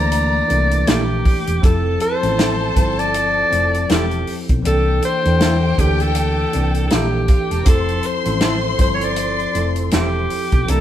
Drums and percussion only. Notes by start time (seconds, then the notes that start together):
0.12 closed hi-hat
0.50 closed hi-hat
0.71 closed hi-hat
0.87 snare, closed hi-hat
1.25 kick, open hi-hat
1.47 closed hi-hat
1.63 kick, closed hi-hat
2.00 closed hi-hat
2.23 closed hi-hat
2.39 snare, closed hi-hat
2.76 kick, closed hi-hat
2.99 closed hi-hat
3.14 closed hi-hat
3.52 closed hi-hat
3.74 closed hi-hat
3.90 snare, closed hi-hat
4.11 closed hi-hat
4.27 open hi-hat
4.49 kick, closed hi-hat
4.65 closed hi-hat
5.02 closed hi-hat
5.25 closed hi-hat
5.41 snare, closed hi-hat
5.78 kick, closed hi-hat
6.00 closed hi-hat
6.15 closed hi-hat
6.53 closed hi-hat
6.74 closed hi-hat
6.90 snare, closed hi-hat
7.28 kick, closed hi-hat
7.51 closed hi-hat
7.66 kick, closed hi-hat
7.89 closed hi-hat
8.03 closed hi-hat
8.25 closed hi-hat
8.41 snare, closed hi-hat
8.79 kick, closed hi-hat
9.01 closed hi-hat
9.16 closed hi-hat
9.40 closed hi-hat
9.55 closed hi-hat
9.76 closed hi-hat
9.91 snare, closed hi-hat
10.30 open hi-hat
10.52 kick, closed hi-hat
10.68 closed hi-hat